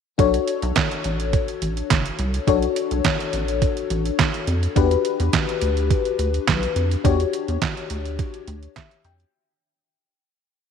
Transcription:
0.18 analog synth bass B1, fm electric piano D4 F#4 A4 C#5, kick, closed hi-hat
0.34 closed hi-hat
0.48 closed hi-hat
0.62 analog synth bass B1, closed hi-hat
0.76 kick, snare, clap, closed hi-hat
0.92 closed hi-hat
1.04 analog synth bass A1, closed hi-hat
1.20 closed hi-hat
1.33 kick, closed hi-hat
1.48 closed hi-hat
1.62 analog synth bass A1, closed hi-hat
1.77 closed hi-hat
1.90 analog synth bass F#1, kick, snare, clap, closed hi-hat
2.06 closed hi-hat
2.19 analog synth bass C2, closed hi-hat
2.34 closed hi-hat
2.47 analog synth bass B1, fm electric piano D4 F#4 A4 C#5, kick, closed hi-hat
2.62 closed hi-hat
2.76 closed hi-hat
2.91 analog synth bass B1, closed hi-hat
3.04 kick, snare, clap, closed hi-hat
3.20 closed hi-hat
3.33 analog synth bass A1, closed hi-hat
3.48 closed hi-hat
3.62 kick, closed hi-hat
3.77 closed hi-hat
3.90 analog synth bass A1, closed hi-hat
4.05 closed hi-hat
4.19 kick, snare, clap, closed hi-hat
4.34 closed hi-hat
4.47 analog synth bass F2, closed hi-hat
4.63 closed hi-hat
4.76 analog synth bass E2, fm electric piano D4 F#4 G4 B4, kick, closed hi-hat
4.91 closed hi-hat
5.05 closed hi-hat
5.20 analog synth bass E2, closed hi-hat
5.33 kick, snare, clap, closed hi-hat
5.49 closed hi-hat
5.61 analog synth bass D2, closed hi-hat
5.77 closed hi-hat
5.91 kick, closed hi-hat
6.05 closed hi-hat
6.19 analog synth bass D2, closed hi-hat
6.34 closed hi-hat
6.48 analog synth bass B1, kick, snare, clap, closed hi-hat
6.63 closed hi-hat
6.76 analog synth bass F2, closed hi-hat
6.91 closed hi-hat
7.04 analog synth bass E2, fm electric piano D4 F#4 G4 C#5, kick, closed hi-hat
7.20 closed hi-hat
7.33 closed hi-hat
7.48 analog synth bass E2, closed hi-hat
7.62 kick, snare, clap, closed hi-hat
7.77 closed hi-hat
7.90 analog synth bass D2, closed hi-hat
8.06 closed hi-hat
8.19 kick, closed hi-hat
8.34 closed hi-hat
8.47 analog synth bass D2, closed hi-hat
8.63 closed hi-hat
8.76 fm electric piano E5, kick, snare, clap, closed hi-hat
8.91 closed hi-hat
9.04 analog synth bass F2, fm electric piano G5, closed hi-hat
9.20 closed hi-hat

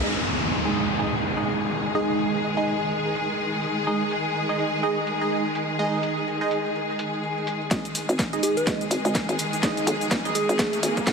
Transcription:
0.03 string section D#3 G#3 G#4, synth stab G#3 D#4 G#4 D#5, crash, downlifter, cabasa
0.27 open hi-hat
0.41 cabasa
0.51 cabasa
0.65 synth stab G#3 D#4 G#4 D#5, cabasa
0.75 open hi-hat
0.89 cabasa
0.99 synth stab G#3 D#4 G#4 D#5, cabasa
1.13 cabasa
1.23 open hi-hat, cabasa
1.37 synth stab G#3 D#4 G#4 D#5, cabasa
1.47 cabasa
1.61 cabasa
1.71 open hi-hat, cabasa
1.85 cabasa
1.95 synth stab G#3 D#4 G#4 D#5
2.09 cabasa
2.19 open hi-hat, cabasa
2.33 cabasa
2.43 cabasa
2.57 synth stab G#3 D#4 G#4 D#5
2.67 open hi-hat, cabasa
2.81 cabasa
2.91 cabasa
3.05 cabasa
3.15 open hi-hat, cabasa
3.29 cabasa
3.39 cabasa
3.53 cabasa
3.63 open hi-hat, cabasa
3.77 cabasa
3.87 synth stab G#3 D#4 G#4 D#5, cabasa
4.01 cabasa
4.11 open hi-hat, cabasa
4.25 cabasa
4.35 cabasa
4.49 synth stab G#3 D#4 G#4 D#5, cabasa
4.59 open hi-hat, cabasa
4.73 cabasa
4.83 synth stab G#3 D#4 G#4 D#5, cabasa
4.97 cabasa
5.07 open hi-hat, cabasa
5.21 synth stab G#3 D#4 G#4 D#5, cabasa
5.31 cabasa
5.45 cabasa
5.55 open hi-hat, cabasa
5.69 cabasa
5.79 synth stab G#3 D#4 G#4 D#5, cabasa
5.93 cabasa
6.03 open hi-hat, cabasa
6.17 cabasa
6.27 cabasa
6.41 synth stab G#3 D#4 G#4 D#5, cabasa
6.51 open hi-hat, cabasa
6.65 cabasa
6.75 cabasa
6.89 cabasa
6.99 open hi-hat, cabasa
7.13 cabasa
7.23 cabasa
7.37 cabasa
7.47 open hi-hat, cabasa
7.61 cabasa
7.71 fm bass G#1, string section D#3 G#3 G#4, synth stab G#3 D#4 G#4 D#5, kick, snare, closed hi-hat, riser, cabasa
7.85 closed hi-hat, cabasa
7.95 open hi-hat, cabasa
8.09 fm bass G#1, closed hi-hat, cabasa
8.19 kick, snare, closed hi-hat, cabasa
8.33 synth stab G#3 D#4 G#4 D#5, closed hi-hat, cabasa
8.43 digital synth lead G#4, open hi-hat, cabasa
8.57 digital synth lead B4, closed hi-hat, cabasa
8.67 fm bass G#1, synth stab G#3 D#4 G#4 D#5, kick, snare, closed hi-hat, cabasa
8.81 closed hi-hat, cabasa
8.91 fm bass G#1, open hi-hat, cabasa
9.05 fm bass G#1, synth stab G#3 D#4 G#4 D#5, closed hi-hat, cabasa
9.15 kick, snare, closed hi-hat, cabasa
9.29 fm bass G#1, closed hi-hat, cabasa
9.39 open hi-hat, cabasa
9.53 closed hi-hat, cabasa
9.63 fm bass F#1, synth stab G#3 D#4 G#4 D#5, kick, snare, closed hi-hat, cabasa
9.77 closed hi-hat, cabasa
9.87 fm bass B1, open hi-hat, cabasa
10.01 closed hi-hat, cabasa
10.11 fm bass G#1, kick, snare, closed hi-hat, cabasa
10.25 synth stab G#3 D#4 G#4 D#5, closed hi-hat, cabasa
10.35 digital synth lead G#4, open hi-hat, cabasa
10.49 fm bass G#1, closed hi-hat, cabasa
10.59 kick, snare, closed hi-hat, cabasa
10.73 closed hi-hat, cabasa
10.83 fm bass G#1, open hi-hat, cabasa
10.97 kick, closed hi-hat, cabasa
11.07 fm bass B1, kick, snare, closed hi-hat, cabasa

